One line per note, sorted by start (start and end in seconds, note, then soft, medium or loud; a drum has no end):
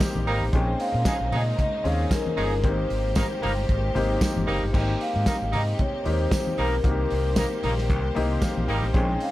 0.00 0.49 D#3 medium
0.00 0.51 G3 medium
0.00 0.49 A#3 medium
0.00 0.55 A#3 medium
0.00 0.52 C4 medium
0.00 0.53 D#4 medium
0.00 0.49 G4 medium
0.00 0.55 G4 loud
0.00 4.70 C5 medium
0.00 kick loud
0.00 snare loud
0.00 closed hi-hat medium
0.00 tambourine medium
0.00 high conga medium
0.15 0.23 A#1 medium
0.15 high conga medium
0.27 0.37 G#1 loud
0.27 0.44 G3 loud
0.27 0.44 A#3 loud
0.27 0.44 D#4 loud
0.27 0.44 A#4 loud
0.27 open hi-hat medium
0.42 0.50 A1 loud
0.52 0.71 A#1 loud
0.52 2.61 C#3 medium
0.52 2.62 G#3 medium
0.52 4.70 A#3 medium
0.52 1.34 C4 medium
0.52 1.34 C#4 medium
0.52 1.35 D#4 medium
0.52 2.62 D#4 medium
0.52 1.35 G#4 medium
0.52 0.81 G5 loud
0.52 kick loud
0.52 closed hi-hat medium
0.52 muted conga medium
0.80 1.34 F5 loud
0.80 open hi-hat medium
0.94 1.02 A#2 loud
1.05 1.15 F3 medium
1.05 1.15 G#3 medium
1.05 1.15 D#4 medium
1.05 1.15 G#4 loud
1.05 kick loud
1.05 snare loud
1.05 closed hi-hat medium
1.05 tambourine loud
1.05 high conga loud
1.21 1.29 A#1 medium
1.32 1.50 A#2 medium
1.32 1.42 F3 loud
1.32 1.42 G#3 medium
1.32 1.42 D#4 medium
1.32 1.42 G#4 loud
1.32 1.57 D#5 loud
1.32 open hi-hat medium
1.32 muted conga medium
1.32 low conga medium
1.59 1.86 D#5 loud
1.59 kick loud
1.59 closed hi-hat medium
1.59 muted conga soft
1.59 low conga medium
1.84 2.03 D#2 medium
1.84 2.46 C4 medium
1.84 2.46 C#4 medium
1.84 2.47 D#4 medium
1.84 2.47 G#4 medium
1.84 1.98 F5 loud
1.84 open hi-hat medium
1.84 muted conga soft
2.11 2.66 A#4 loud
2.11 kick loud
2.11 snare loud
2.11 closed hi-hat medium
2.11 tambourine medium
2.11 high conga medium
2.26 high conga medium
2.37 2.64 G1 loud
2.37 2.54 F3 loud
2.37 2.54 G#3 loud
2.37 2.54 D#4 loud
2.37 2.54 G#4 loud
2.37 open hi-hat medium
2.63 2.82 G#1 loud
2.63 4.72 D#3 medium
2.63 4.72 G#3 medium
2.63 3.45 A#3 medium
2.63 3.45 C4 medium
2.63 3.45 D#4 medium
2.63 4.72 G4 medium
2.63 3.46 G4 medium
2.63 4.18 C5 loud
2.63 kick loud
2.63 closed hi-hat medium
2.63 muted conga medium
2.90 3.19 G#1 loud
2.90 open hi-hat medium
3.15 3.26 G3 medium
3.15 3.26 A#3 medium
3.15 3.26 D#4 medium
3.15 3.26 A#4 medium
3.15 kick loud
3.15 snare loud
3.15 closed hi-hat medium
3.15 tambourine medium
3.15 high conga loud
3.42 3.61 G1 medium
3.42 3.52 G3 loud
3.42 3.52 A#3 loud
3.42 3.52 D#4 medium
3.42 3.52 A#4 loud
3.42 open hi-hat medium
3.42 muted conga medium
3.42 low conga medium
3.69 3.87 G#1 loud
3.69 kick loud
3.69 closed hi-hat medium
3.69 muted conga soft
3.95 4.13 G#1 medium
3.95 4.57 A#3 medium
3.95 4.57 C4 medium
3.95 4.57 D#4 medium
3.95 4.57 G4 loud
3.95 open hi-hat medium
3.95 low conga medium
4.21 kick loud
4.21 snare loud
4.21 closed hi-hat medium
4.21 tambourine medium
4.21 high conga medium
4.36 4.44 G1 medium
4.36 high conga medium
4.47 4.58 F#1 medium
4.47 4.64 G3 medium
4.47 4.64 A#3 loud
4.47 4.64 D#4 medium
4.47 4.64 A#4 loud
4.47 open hi-hat medium
4.63 4.71 G1 medium
4.73 4.92 G#1 loud
4.73 8.91 D#3 medium
4.73 6.82 G#3 medium
4.73 5.55 A#3 medium
4.73 9.31 A#3 medium
4.73 5.55 C4 medium
4.73 6.82 C4 medium
4.73 5.55 D#4 medium
4.73 6.82 G4 medium
4.73 5.56 G4 medium
4.73 4.99 G5 loud
4.73 kick loud
4.73 crash loud
4.73 muted conga medium
5.01 5.55 F5 loud
5.01 open hi-hat medium
5.16 5.23 G#2 loud
5.26 5.36 G3 medium
5.26 5.36 A#3 medium
5.26 5.36 D#4 medium
5.26 5.36 A#4 medium
5.26 kick loud
5.26 snare loud
5.26 closed hi-hat medium
5.26 tambourine loud
5.26 high conga loud
5.42 5.55 G#1 medium
5.52 5.71 G#2 medium
5.52 5.62 G3 medium
5.52 5.62 A#3 medium
5.52 5.62 D#4 loud
5.52 5.62 A#4 loud
5.52 5.78 D#5 medium
5.52 open hi-hat medium
5.52 muted conga soft
5.52 low conga medium
5.79 6.07 C#5 loud
5.79 kick loud
5.79 closed hi-hat medium
5.79 muted conga soft
5.79 low conga medium
6.05 6.24 D#2 medium
6.05 6.67 A#3 medium
6.05 6.67 C4 medium
6.05 6.67 D#4 medium
6.05 6.68 G4 medium
6.05 6.60 C5 medium
6.05 open hi-hat medium
6.05 muted conga soft
6.31 kick loud
6.31 snare loud
6.31 closed hi-hat medium
6.31 tambourine medium
6.31 high conga medium
6.47 high conga medium
6.58 6.77 B1 loud
6.58 6.75 G3 loud
6.58 6.75 A#3 loud
6.58 6.75 D#4 loud
6.58 6.75 A#4 loud
6.58 8.13 A#4 medium
6.58 open hi-hat medium
6.84 7.03 C2 loud
6.84 8.93 G3 medium
6.84 7.65 A#3 medium
6.84 7.66 C4 medium
6.84 7.66 D#4 medium
6.84 6.92 F#4 medium
6.84 8.93 G4 medium
6.84 9.31 C5 medium
6.84 kick loud
6.84 closed hi-hat medium
6.84 muted conga medium
6.91 7.69 G4 medium
7.10 7.40 C2 loud
7.10 open hi-hat medium
7.36 7.46 G3 medium
7.36 7.46 A#3 medium
7.36 7.46 D#4 medium
7.36 7.46 A#4 medium
7.36 kick loud
7.36 snare loud
7.36 closed hi-hat medium
7.36 tambourine medium
7.36 high conga loud
7.63 7.90 A#1 medium
7.63 7.73 G3 medium
7.63 7.73 A#3 medium
7.63 7.73 D#4 medium
7.63 7.73 A#4 loud
7.63 open hi-hat medium
7.63 muted conga medium
7.63 low conga medium
7.78 snare soft
7.90 8.08 C2 loud
7.90 kick loud
7.90 closed hi-hat medium
7.90 muted conga medium
8.15 8.34 C2 loud
8.15 8.77 A#3 medium
8.15 8.77 C4 medium
8.15 8.78 D#4 medium
8.15 8.78 G4 loud
8.15 8.40 D#5 medium
8.15 open hi-hat medium
8.15 muted conga soft
8.15 low conga medium
8.42 8.67 F5 medium
8.42 kick loud
8.42 snare loud
8.42 closed hi-hat medium
8.42 tambourine medium
8.42 high conga medium
8.57 8.65 A#1 medium
8.57 high conga medium
8.68 8.79 G#1 loud
8.68 8.85 G3 loud
8.68 8.85 A#3 loud
8.68 8.85 D#4 loud
8.68 8.85 A#4 loud
8.68 8.93 G5 medium
8.68 open hi-hat medium
8.83 8.91 A1 medium
8.94 9.13 A#1 loud
8.94 9.31 C#3 medium
8.94 9.31 G#3 medium
8.94 9.31 C4 medium
8.94 9.31 C#4 medium
8.94 9.31 D#4 loud
8.94 9.31 D#4 medium
8.94 9.31 G#4 medium
8.94 9.20 G5 loud
8.94 kick loud
8.94 closed hi-hat medium
8.94 muted conga medium
9.20 9.31 F5 loud
9.20 open hi-hat medium